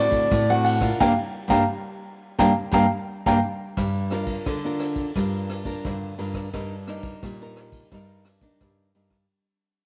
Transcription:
0.00 0.29 D3 medium
0.00 0.43 A3 medium
0.00 0.43 C4 medium
0.00 0.44 F#4 medium
0.00 0.50 D5 loud
0.10 0.27 A2 medium
0.10 kick medium
0.10 ride soft
0.31 0.91 A2 loud
0.31 0.97 A2 medium
0.31 kick medium
0.31 cross-stick medium
0.31 ride soft
0.50 0.79 A3 medium
0.50 0.79 C4 medium
0.50 0.79 F#4 medium
0.50 0.63 F#5 medium
0.65 0.98 F#5 medium
0.65 ride soft
0.81 1.00 D4 medium
0.81 1.00 F4 medium
0.81 1.00 A#4 medium
0.81 kick medium
0.81 cross-stick medium
0.81 ride soft
1.00 1.14 G2 medium
1.00 1.12 G3 medium
1.00 1.12 A#3 medium
1.00 1.12 D4 medium
1.00 1.12 F5 loud
1.00 1.12 G5 loud
1.00 1.12 A#5 medium
1.00 kick medium
1.00 snare medium
1.48 1.63 G2 medium
1.48 1.63 G3 medium
1.48 1.63 A#3 medium
1.48 1.63 D4 medium
1.48 1.62 F5 medium
1.48 1.62 G5 medium
1.48 1.62 A#5 medium
1.48 kick medium
1.48 snare medium
2.38 2.52 G2 medium
2.38 2.51 G3 loud
2.38 2.51 A#3 loud
2.38 2.51 D4 loud
2.38 2.50 F5 medium
2.38 2.50 G5 loud
2.38 2.50 A#5 medium
2.38 kick medium
2.38 snare medium
2.72 2.85 G2 loud
2.72 2.85 G3 medium
2.72 2.85 A#3 medium
2.72 2.85 D4 medium
2.72 2.85 F5 loud
2.72 2.85 G5 loud
2.72 2.85 A#5 loud
2.72 kick medium
2.72 snare medium
3.26 3.39 G2 medium
3.26 3.38 G3 medium
3.26 3.38 A#3 medium
3.26 3.38 D4 medium
3.26 3.37 F5 medium
3.26 3.37 G5 medium
3.26 3.37 A#5 medium
3.26 kick medium
3.26 snare medium
3.77 4.36 G2 medium
3.77 4.43 G3 medium
3.77 kick medium
3.77 cross-stick medium
3.77 ride soft
4.11 4.58 D4 medium
4.11 4.58 F4 medium
4.11 4.58 A#4 medium
4.11 cross-stick medium
4.11 ride soft
4.26 kick medium
4.26 ride soft
4.46 5.05 D3 medium
4.46 5.13 D3 medium
4.46 kick medium
4.46 cross-stick medium
4.46 ride soft
4.64 5.10 D4 medium
4.64 5.11 F4 medium
4.64 5.11 A#4 medium
4.79 cross-stick medium
4.79 ride soft
4.96 kick medium
4.96 ride soft
5.16 5.74 G2 medium
5.16 5.82 G3 medium
5.16 5.62 D4 medium
5.16 5.63 F4 medium
5.16 5.63 A#4 medium
5.16 kick medium
5.16 cross-stick medium
5.16 ride soft
5.49 cross-stick medium
5.49 ride soft
5.65 6.13 D4 medium
5.65 6.13 F4 medium
5.65 6.13 A#4 medium
5.65 kick medium
5.65 ride soft
5.84 6.14 G2 medium
5.84 6.50 D3 medium
5.84 kick medium
5.84 cross-stick medium
5.84 ride soft
6.18 6.48 G2 medium
6.18 6.48 D4 soft
6.18 6.48 F4 soft
6.18 6.48 A#4 medium
6.18 ride soft
6.34 kick medium
6.34 cross-stick medium
6.34 ride soft
6.53 7.12 G2 loud
6.53 7.19 G3 soft
6.53 6.74 D4 medium
6.53 6.74 D#4 soft
6.53 6.74 A#4 medium
6.53 kick medium
6.53 cross-stick medium
6.53 ride soft
6.87 7.34 D4 medium
6.87 7.35 D#4 soft
6.87 7.35 A#4 medium
6.87 cross-stick medium
6.87 ride soft
7.03 kick medium
7.03 ride soft
7.23 7.82 A#2 medium
7.23 7.89 G3 medium
7.23 kick medium
7.23 cross-stick medium
7.23 ride soft
7.41 7.87 D4 medium
7.41 7.87 D#4 medium
7.41 7.88 A#4 medium
7.56 cross-stick medium
7.56 ride soft
7.72 kick medium
7.72 ride soft
7.92 8.51 G2 medium
7.92 8.58 G3 medium
7.92 8.25 D4 soft
7.92 8.25 D#4 medium
7.92 8.25 A#4 medium
7.92 kick medium
7.92 cross-stick medium
7.92 ride soft
8.25 cross-stick medium
8.25 ride soft
8.41 8.89 D4 medium
8.41 8.90 D#4 medium
8.41 8.90 A#4 medium
8.41 kick medium
8.41 ride soft
8.61 8.91 G2 medium
8.61 9.27 G3 medium
8.61 kick medium
8.61 cross-stick medium
8.61 ride soft
8.94 9.25 G2 medium
8.94 9.16 D4 soft
8.94 9.16 D#4 soft
8.94 9.16 A#4 medium
8.94 ride soft
9.10 kick medium
9.10 cross-stick medium
9.10 ride soft

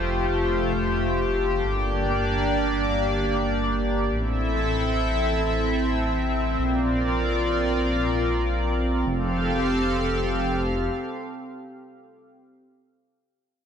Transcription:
0.00 1.61 F1 medium
0.00 1.62 A3 medium
0.00 1.60 F4 medium
0.00 4.08 G4 medium
0.00 1.60 C5 medium
1.64 4.09 G1 medium
1.64 4.09 A#3 medium
1.64 4.09 D4 medium
1.64 4.09 D5 medium
4.12 6.56 A1 medium
4.12 9.03 C4 medium
4.12 6.57 E4 medium
4.12 6.57 A4 medium
4.12 6.57 E5 medium
6.59 9.04 A#1 medium
6.59 9.04 F4 medium
6.59 9.04 A#4 medium
6.59 9.04 D5 medium
9.07 10.88 F1 medium
9.07 12.17 C4 medium
9.07 12.16 G4 medium
9.07 12.17 A4 medium
9.07 12.17 F5 medium

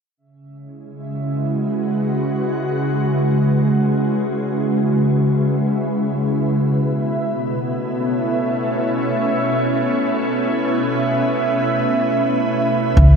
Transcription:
0.17 6.57 C#3 medium
0.17 13.16 E5 medium
0.46 6.57 G#3 medium
0.59 13.16 E4 medium
0.93 8.09 F#4 medium
1.11 13.16 B4 medium
6.57 12.97 B2 medium
7.14 12.97 A3 medium
7.37 13.16 C#4 medium
12.96 13.16 C#2 medium
12.96 13.16 C#3 medium
12.96 kick loud

